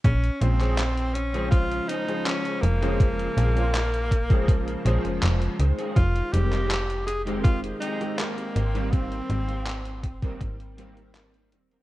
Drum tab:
HH |xxxxxxxxxxxxxxxx|xxxxxxxxxxxxxxxx|xxxxxxxxxxxxxxxx|xxxxxxxxxxxxxxxx|
CP |---xx-------x---|----x-------x---|---xx-------x---|----x-------x---|
BD |o-------o-------|o-----ooo-------|o-------o-------|o-----ooo-------|